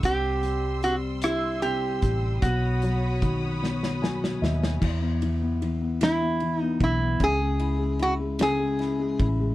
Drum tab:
CC |------------|------------|x-----------|------------|
RD |------------|------------|--x-x-x-x-x-|x-x-x-x-x-x-|
HH |x-x-x-x-x-x-|x-x-x-------|------------|------------|
SD |------r-----|------oooooo|------o-----|------o-o---|
BD |o---------o-|o---o-------|o---------o-|o---------o-|